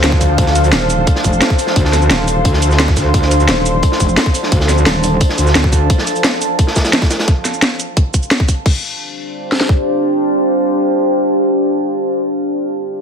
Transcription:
0.00 0.37 D2 medium
0.00 5.86 F3 medium
0.00 5.86 D4 medium
0.00 5.86 A4 medium
0.00 5.86 C5 medium
0.00 7.28 F5 medium
0.00 1.40 A5 medium
0.00 snare loud
0.00 closed hi-hat medium
0.00 closed hi-hat loud
0.12 kick loud
0.21 kick medium
0.21 closed hi-hat medium
0.21 open hi-hat medium
0.21 shaker medium
0.38 0.71 D2 loud
0.38 kick loud
0.38 closed hi-hat loud
0.38 closed hi-hat medium
0.47 snare medium
0.55 closed hi-hat medium
0.55 shaker medium
0.64 closed hi-hat soft
0.64 shaker soft
0.73 1.06 D#1 loud
0.73 snare loud
0.73 closed hi-hat medium
0.73 closed hi-hat loud
0.90 closed hi-hat medium
0.90 shaker medium
1.07 kick loud
1.07 closed hi-hat medium
1.07 closed hi-hat loud
1.16 snare medium
1.24 1.40 F1 loud
1.24 kick medium
1.24 closed hi-hat medium
1.24 shaker medium
1.33 shaker soft
1.38 4.15 C6 medium
1.42 snare loud
1.42 closed hi-hat loud
1.42 closed hi-hat medium
1.50 kick loud
1.50 closed hi-hat soft
1.59 closed hi-hat medium
1.59 open hi-hat medium
1.59 shaker medium
1.67 snare medium
1.76 2.09 D2 loud
1.76 kick loud
1.76 closed hi-hat medium
1.85 snare medium
1.93 snare soft
1.93 closed hi-hat medium
1.93 shaker medium
2.02 shaker soft
2.10 2.44 D#1 medium
2.10 snare loud
2.10 closed hi-hat medium
2.28 closed hi-hat medium
2.28 shaker medium
2.45 2.95 D2 loud
2.45 kick loud
2.45 closed hi-hat medium
2.54 snare medium
2.62 closed hi-hat medium
2.62 shaker medium
2.71 snare soft
2.71 shaker soft
2.79 snare loud
2.79 closed hi-hat medium
2.88 kick loud
2.88 snare medium
2.96 3.13 D2 loud
2.96 kick medium
2.96 snare soft
2.96 closed hi-hat medium
2.96 open hi-hat medium
2.96 shaker medium
3.14 3.47 D2 loud
3.14 kick loud
3.14 closed hi-hat medium
3.22 snare medium
3.31 closed hi-hat medium
3.31 shaker medium
3.40 closed hi-hat soft
3.40 shaker soft
3.48 3.82 D#1 medium
3.48 snare loud
3.48 closed hi-hat medium
3.66 closed hi-hat medium
3.66 shaker medium
3.83 kick loud
3.83 closed hi-hat medium
3.92 snare medium
4.00 4.16 F1 loud
4.00 kick medium
4.00 closed hi-hat medium
4.00 shaker medium
4.09 shaker soft
4.14 6.91 A5 medium
4.14 snare loud
4.14 closed hi-hat medium
4.18 snare loud
4.18 closed hi-hat loud
4.26 kick loud
4.26 closed hi-hat soft
4.34 closed hi-hat medium
4.34 open hi-hat medium
4.34 shaker medium
4.43 snare medium
4.52 4.85 D2 loud
4.52 kick loud
4.52 closed hi-hat medium
4.60 snare medium
4.68 snare soft
4.68 closed hi-hat medium
4.68 shaker medium
4.78 shaker soft
4.86 5.20 D#1 loud
4.86 snare loud
4.86 closed hi-hat medium
5.04 closed hi-hat medium
5.04 shaker medium
5.20 kick loud
5.20 closed hi-hat medium
5.29 snare medium
5.38 5.54 D2 loud
5.38 closed hi-hat medium
5.38 shaker medium
5.47 snare soft
5.47 shaker soft
5.55 5.89 D2 loud
5.55 snare medium
5.55 snare loud
5.55 closed hi-hat medium
5.64 kick loud
5.72 kick medium
5.72 closed hi-hat medium
5.72 open hi-hat medium
5.72 shaker medium
5.90 kick loud
5.90 closed hi-hat medium
5.98 snare medium
6.07 closed hi-hat medium
6.07 shaker medium
6.16 closed hi-hat soft
6.16 shaker soft
6.24 snare loud
6.24 closed hi-hat loud
6.24 closed hi-hat medium
6.41 closed hi-hat medium
6.41 shaker medium
6.59 kick loud
6.59 closed hi-hat medium
6.67 snare medium
6.76 kick medium
6.76 snare loud
6.76 closed hi-hat medium
6.76 shaker medium
6.85 snare loud
6.85 closed hi-hat medium
6.85 shaker soft
6.93 snare loud
6.93 closed hi-hat loud
6.93 closed hi-hat medium
7.01 kick loud
7.01 snare loud
7.01 closed hi-hat medium
7.11 snare loud
7.11 closed hi-hat medium
7.11 open hi-hat medium
7.11 shaker medium
7.19 snare loud
7.19 closed hi-hat medium
7.28 kick loud
7.28 closed hi-hat loud
7.45 snare soft
7.45 closed hi-hat medium
7.45 shaker medium
7.54 shaker soft
7.62 snare loud
7.62 closed hi-hat loud
7.80 closed hi-hat medium
7.80 shaker medium
7.97 kick loud
7.97 closed hi-hat loud
8.14 kick medium
8.14 closed hi-hat medium
8.14 shaker medium
8.23 shaker soft
8.31 snare loud
8.31 closed hi-hat loud
8.40 kick loud
8.49 kick medium
8.49 open hi-hat medium
8.49 shaker medium
8.66 12.18 D4 medium
8.66 kick loud
8.66 crash medium
8.71 12.18 G4 medium
8.76 12.18 C5 medium
8.82 12.18 F5 medium
8.87 12.18 A5 medium
9.52 snare medium
9.61 snare medium
9.69 kick medium

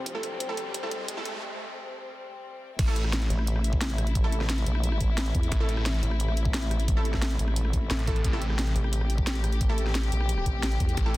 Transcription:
0.00 2.75 C3 medium
0.00 2.75 G3 medium
0.00 2.77 C4 medium
0.00 riser medium
0.06 kick loud
0.06 closed hi-hat loud
0.15 0.20 A3 medium
0.15 0.20 E4 medium
0.15 0.20 A4 loud
0.23 kick loud
0.23 closed hi-hat medium
0.40 kick loud
0.40 closed hi-hat medium
0.49 0.55 A3 medium
0.49 0.55 E4 medium
0.49 0.55 A4 loud
0.57 kick loud
0.57 closed hi-hat medium
0.74 kick loud
0.74 closed hi-hat loud
0.83 0.89 A3 medium
0.83 0.89 E4 medium
0.83 0.89 A4 loud
0.91 kick loud
0.91 closed hi-hat medium
1.08 kick loud
1.08 closed hi-hat loud
1.17 1.23 A3 medium
1.17 1.23 E4 medium
1.17 1.23 A4 loud
1.26 kick loud
1.26 closed hi-hat medium
2.79 3.29 A1 loud
2.79 11.17 C3 medium
2.79 11.17 A3 medium
2.79 8.22 E4 medium
2.79 kick loud
2.79 closed hi-hat loud
2.79 crash loud
2.88 2.93 A3 medium
2.88 2.93 E4 medium
2.88 2.93 A4 loud
2.96 closed hi-hat medium
3.05 cross-stick medium
3.13 snare loud
3.13 closed hi-hat loud
3.22 closed hi-hat soft
3.30 4.65 A1 loud
3.30 closed hi-hat medium
3.39 cross-stick medium
3.47 closed hi-hat loud
3.56 cross-stick soft
3.64 closed hi-hat medium
3.73 kick loud
3.81 snare loud
3.81 closed hi-hat loud
3.90 closed hi-hat soft
3.98 cross-stick medium
3.98 closed hi-hat medium
4.07 closed hi-hat soft
4.15 kick loud
4.15 closed hi-hat medium
4.24 5.58 A3 medium
4.24 5.58 E4 medium
4.24 5.58 A4 medium
4.32 closed hi-hat medium
4.41 cross-stick medium
4.41 snare soft
4.49 snare loud
4.49 closed hi-hat medium
4.58 closed hi-hat soft
4.66 4.99 A#1 loud
4.66 closed hi-hat medium
4.75 cross-stick medium
4.84 closed hi-hat medium
4.92 cross-stick soft
5.01 5.33 A1 loud
5.01 kick medium
5.01 closed hi-hat medium
5.18 snare loud
5.18 closed hi-hat loud
5.26 closed hi-hat soft
5.35 5.50 E2 loud
5.35 kick loud
5.35 closed hi-hat medium
5.43 closed hi-hat soft
5.52 6.01 A1 loud
5.52 kick loud
5.52 closed hi-hat medium
5.60 5.66 A3 medium
5.60 5.66 E4 medium
5.60 5.66 A4 loud
5.69 closed hi-hat medium
5.77 cross-stick medium
5.86 snare loud
5.86 closed hi-hat medium
5.94 closed hi-hat soft
6.03 7.38 A1 loud
6.03 closed hi-hat medium
6.11 cross-stick medium
6.20 closed hi-hat medium
6.28 cross-stick soft
6.37 closed hi-hat medium
6.45 kick loud
6.54 snare loud
6.54 closed hi-hat medium
6.63 closed hi-hat soft
6.71 cross-stick medium
6.71 closed hi-hat medium
6.80 closed hi-hat soft
6.88 kick loud
6.88 closed hi-hat medium
6.97 8.06 A3 medium
6.97 8.06 E4 medium
6.97 8.06 A4 medium
7.05 closed hi-hat medium
7.14 kick medium
7.14 cross-stick medium
7.14 snare soft
7.22 snare loud
7.22 closed hi-hat medium
7.31 closed hi-hat soft
7.39 7.89 A1 loud
7.39 closed hi-hat medium
7.48 cross-stick soft
7.56 closed hi-hat medium
7.65 cross-stick soft
7.73 kick medium
7.73 closed hi-hat medium
7.90 8.23 A1 medium
7.90 snare loud
7.90 closed hi-hat medium
7.99 closed hi-hat soft
8.07 8.17 A3 medium
8.07 8.17 E4 medium
8.07 8.17 A4 loud
8.07 kick loud
8.07 closed hi-hat medium
8.16 closed hi-hat soft
8.24 8.74 A1 loud
8.24 11.17 G4 medium
8.24 kick loud
8.24 closed hi-hat medium
8.33 8.39 A3 medium
8.33 8.39 E4 medium
8.33 8.39 A4 loud
8.42 closed hi-hat medium
8.50 cross-stick medium
8.59 snare loud
8.59 closed hi-hat medium
8.67 closed hi-hat soft
8.76 10.11 A1 loud
8.76 closed hi-hat medium
8.84 cross-stick soft
8.93 closed hi-hat medium
9.01 cross-stick soft
9.10 closed hi-hat medium
9.18 kick loud
9.27 snare loud
9.27 closed hi-hat medium
9.35 closed hi-hat soft
9.44 cross-stick medium
9.44 closed hi-hat medium
9.52 closed hi-hat soft
9.61 kick loud
9.61 closed hi-hat medium
9.69 11.04 A3 medium
9.69 11.04 E4 medium
9.69 11.04 A4 medium
9.78 closed hi-hat medium
9.86 cross-stick medium
9.86 snare soft
9.95 snare loud
9.95 closed hi-hat medium
10.03 closed hi-hat soft
10.12 10.45 A#1 loud
10.12 closed hi-hat medium
10.21 cross-stick soft
10.29 closed hi-hat medium
10.38 cross-stick soft
10.46 10.79 A1 loud
10.46 kick medium
10.46 closed hi-hat medium
10.63 snare loud
10.63 closed hi-hat medium
10.72 closed hi-hat soft
10.80 10.96 E2 loud
10.80 kick loud
10.80 closed hi-hat medium
10.89 closed hi-hat soft
10.97 11.17 A1 loud
10.97 kick loud
10.97 closed hi-hat loud
11.06 11.11 A3 medium
11.06 11.11 E4 medium
11.06 11.11 A4 loud

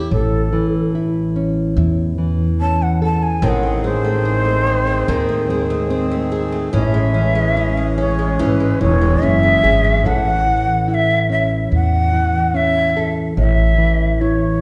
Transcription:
0.00 0.52 E3 medium
0.00 0.11 E4 soft
0.00 0.11 G4 medium
0.11 1.73 A1 medium
0.11 3.37 A2 medium
0.11 0.92 A4 medium
0.53 2.17 E3 medium
0.95 1.77 E4 medium
1.36 2.60 C#4 medium
1.77 3.38 E2 medium
1.77 3.38 E4 soft
2.18 3.42 E3 medium
2.61 3.38 C#4 medium
2.61 2.84 A5 medium
2.82 3.00 F#5 medium
3.02 3.38 A4 medium
3.02 3.24 A5 medium
3.23 3.45 G#5 medium
3.42 5.04 A1 loud
3.42 6.69 A2 medium
3.42 5.07 D#3 medium
3.42 6.70 D#3 medium
3.42 3.83 C4 medium
3.42 6.70 C4 medium
3.42 10.01 G#4 medium
3.42 3.50 G5 medium
3.49 3.83 F#5 medium
3.63 4.03 A3 soft
3.84 5.48 G#3 medium
3.84 4.24 C4 medium
3.84 6.28 C5 loud
4.05 4.44 A3 medium
4.25 4.65 C4 medium
4.25 5.08 D#4 medium
4.45 4.86 A3 medium
4.67 5.08 C4 medium
4.67 5.89 C4 medium
4.87 5.28 A3 medium
5.08 6.69 D#2 medium
5.08 6.72 D#3 medium
5.08 5.49 C4 medium
5.08 6.69 D#4 medium
5.29 5.69 A3 medium
5.50 6.68 G#3 medium
5.50 5.89 C4 medium
5.70 6.10 A3 medium
5.90 6.68 C4 medium
5.90 6.30 C4 medium
6.11 6.51 A3 medium
6.32 6.73 C4 medium
6.32 6.68 G#4 medium
6.52 6.81 A3 medium
6.73 8.35 A1 medium
6.73 10.00 A2 medium
6.73 8.38 E3 medium
6.73 10.01 E3 medium
6.73 10.01 C#4 medium
6.73 7.13 C#4 medium
6.73 7.95 E5 medium
6.94 7.34 G#3 medium
7.14 8.80 E3 medium
7.14 7.56 C#4 medium
7.35 7.76 G#3 medium
7.56 7.96 C#4 medium
7.56 8.38 E4 medium
7.77 8.18 G#3 medium
7.98 8.39 C#4 medium
7.98 9.22 C#4 medium
7.98 8.42 C#5 medium
8.19 8.59 G#3 medium
8.39 8.78 G#1 medium
8.39 10.13 E3 medium
8.39 8.79 C#4 medium
8.39 10.00 E4 soft
8.39 8.47 C5 medium
8.46 8.80 B4 medium
8.60 9.00 G#3 medium
8.81 9.18 E1 medium
8.81 10.03 E3 medium
8.81 9.22 C#4 medium
8.81 9.25 C#5 medium
9.01 9.42 G#3 medium
9.22 9.59 F#1 medium
9.22 10.00 C#4 medium
9.22 9.63 C#4 medium
9.22 10.07 E5 medium
9.43 9.83 G#3 medium
9.63 10.01 G#1 medium
9.63 10.13 C#4 medium
9.63 10.00 G#4 medium
9.84 10.13 G#3 medium
10.03 11.68 A1 medium
10.03 13.31 A2 medium
10.03 10.46 E3 medium
10.03 11.29 C#4 medium
10.03 10.87 E4 medium
10.03 12.95 A4 medium
10.03 10.90 F#5 medium
10.46 12.11 E3 medium
10.88 11.71 E4 medium
10.88 10.95 F#5 medium
10.94 11.31 E5 loud
11.30 12.53 C#4 medium
11.30 11.69 E5 medium
11.71 13.34 E2 medium
11.71 13.32 E4 medium
11.71 12.58 F#5 medium
12.13 13.77 E3 medium
12.54 13.32 C#4 medium
12.54 13.11 E5 medium
12.97 13.33 A4 medium
13.37 14.61 A1 medium
13.37 14.61 A2 medium
13.37 14.22 E5 medium
13.78 14.61 E3 medium
14.21 14.61 E4 medium
14.21 14.61 C#5 medium

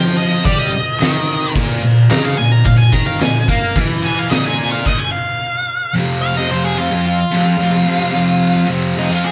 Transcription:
0.00 0.44 F3 medium
0.00 0.16 G5 loud
0.17 0.44 D#5 loud
0.45 0.72 G3 loud
0.45 0.59 D5 loud
0.45 kick loud
0.45 crash medium
0.59 0.70 D#5 medium
0.71 1.52 D#5 medium
0.71 muted distorted electric guitar stroke medium
1.00 1.55 D#3 loud
1.00 snare loud
1.00 clap medium
1.00 crash medium
1.56 1.82 A#2 loud
1.56 kick loud
1.56 crash medium
1.83 2.05 A#2 medium
2.09 2.37 C#3 loud
2.09 2.24 A#5 loud
2.09 snare loud
2.09 clap medium
2.09 crash medium
2.24 2.37 F5 medium
2.37 2.60 A#2 medium
2.37 2.51 G#5 medium
2.52 2.65 A#5 medium
2.65 2.88 A#2 medium
2.65 2.77 F5 medium
2.65 kick loud
2.65 crash medium
2.78 2.92 G#5 medium
2.92 3.20 D#3 loud
2.92 3.06 A#5 medium
2.92 kick loud
3.07 3.20 F5 medium
3.20 3.43 A#2 medium
3.20 3.48 G#5 loud
3.20 snare loud
3.20 clap medium
3.20 crash medium
3.48 3.75 A#3 loud
3.48 3.76 F5 loud
3.48 kick medium
3.76 4.30 E3 loud
3.76 kick loud
3.76 crash medium
4.03 4.19 G#5 loud
4.03 clap medium
4.19 4.31 F5 loud
4.30 4.85 A#2 loud
4.30 4.44 D#5 loud
4.30 snare loud
4.30 clap medium
4.30 crash medium
4.46 4.57 G#5 medium
4.59 4.71 G#5 loud
4.72 4.85 F5 medium
4.85 4.99 D#5 medium
4.85 kick loud
4.85 crash loud
4.99 5.11 G#5 medium
5.12 5.92 F5 loud
5.94 6.48 F2 loud
5.94 6.38 C3 loud
5.94 6.35 F3 loud
6.22 6.36 F5 loud
6.35 6.49 C3 medium
6.35 6.52 F3 medium
6.35 6.51 D#5 medium
6.49 6.76 F2 medium
6.49 6.77 C3 loud
6.49 6.79 F3 loud
6.49 6.64 C5 medium
6.64 6.78 G#4 medium
6.76 7.18 F2 loud
6.76 6.90 C3 loud
6.76 6.89 F3 medium
6.76 7.05 F4 loud
6.91 muted distorted electric guitar stroke medium
7.06 8.66 F4 loud
7.31 7.57 F2 medium
7.31 7.44 C3 loud
7.31 7.44 F3 loud
7.45 muted distorted electric guitar stroke medium
7.58 7.84 F2 medium
7.58 7.74 C3 loud
7.58 7.71 F3 loud
7.72 7.85 C3 medium
7.72 7.87 F3 medium
7.85 8.10 F2 medium
7.85 8.01 C3 medium
7.85 7.97 F3 medium
7.99 8.12 C3 medium
7.99 8.14 F3 medium
8.11 8.66 F2 loud
8.11 8.56 C3 loud
8.11 8.52 F3 loud
8.53 8.68 C3 medium
8.53 8.69 F3 medium
8.67 8.95 F2 loud
8.67 8.96 C3 loud
8.67 8.99 F3 loud
8.96 9.32 F2 medium
8.96 9.09 C3 medium
8.96 9.08 F3 loud
8.96 9.12 D#4 medium
9.10 9.25 F4 medium
9.10 muted distorted electric guitar stroke medium
9.24 9.32 G#4 medium

